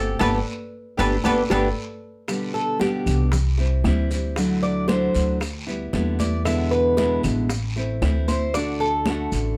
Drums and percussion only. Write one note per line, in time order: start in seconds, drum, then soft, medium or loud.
0.20 low bongo medium
0.20 high conga medium
0.20 long guiro medium
0.20 claves medium
0.20 maracas medium
0.99 low bongo medium
0.99 high conga medium
0.99 long guiro medium
0.99 claves medium
0.99 maracas loud
1.24 low bongo medium
1.24 high conga loud
1.24 long guiro medium
1.24 claves medium
1.24 maracas medium
1.50 low bongo medium
1.50 high conga medium
1.50 claves medium
1.50 maracas medium
2.28 high bongo medium
2.28 high conga soft
2.28 long guiro medium
2.28 claves medium
2.28 maracas medium
2.54 high bongo soft
2.54 high conga soft
2.54 maracas soft
2.80 high bongo medium
2.80 high conga medium
2.80 short guiro medium
2.80 maracas soft
3.07 low conga medium
3.07 short guiro medium
3.07 claves medium
3.07 maracas medium
3.32 high bongo medium
3.32 high conga soft
3.32 low conga medium
3.32 long guiro medium
3.32 maracas medium
3.58 high bongo soft
3.58 high conga soft
3.58 maracas soft
3.84 high bongo soft
3.84 low bongo medium
3.84 high conga medium
3.84 short guiro medium
3.84 claves medium
3.84 maracas soft
4.10 high bongo soft
4.10 short guiro medium
4.10 maracas medium
4.36 high bongo medium
4.36 high conga soft
4.36 long guiro medium
4.36 maracas medium
4.63 high bongo soft
4.63 high conga soft
4.63 maracas soft
4.88 high bongo medium
4.88 high conga medium
4.88 short guiro medium
4.88 claves medium
4.88 maracas soft
5.14 high conga soft
5.14 short guiro medium
5.14 maracas medium
5.40 high bongo medium
5.40 high conga soft
5.40 long guiro medium
5.40 claves medium
5.40 maracas medium
5.67 high bongo soft
5.67 high conga soft
5.67 maracas soft
5.93 high bongo soft
5.93 low bongo medium
5.93 high conga medium
5.93 short guiro medium
5.93 maracas soft
6.19 high bongo soft
6.19 high conga medium
6.19 short guiro medium
6.19 maracas medium
6.45 high bongo medium
6.45 long guiro medium
6.45 claves medium
6.45 maracas medium
6.72 high bongo soft
6.72 high conga soft
6.72 maracas soft
6.97 high bongo medium
6.97 high conga medium
6.97 short guiro medium
6.97 maracas soft
7.23 low conga medium
7.23 short guiro medium
7.23 claves medium
7.23 maracas medium
7.50 high bongo medium
7.50 high conga soft
7.50 long guiro medium
7.50 maracas medium
7.76 high bongo soft
7.76 high conga soft
7.76 maracas soft
8.02 high bongo soft
8.02 low bongo medium
8.02 high conga medium
8.02 short guiro medium
8.02 claves medium
8.02 maracas soft
8.28 high bongo soft
8.28 high conga medium
8.28 short guiro medium
8.28 maracas medium
8.54 high bongo medium
8.54 high conga soft
8.54 long guiro medium
8.54 maracas medium
8.80 high bongo soft
8.80 high conga soft
8.80 maracas soft
9.06 high bongo medium
9.06 high conga medium
9.06 short guiro medium
9.06 claves medium
9.06 maracas soft
9.32 high conga soft
9.32 short guiro medium
9.32 maracas medium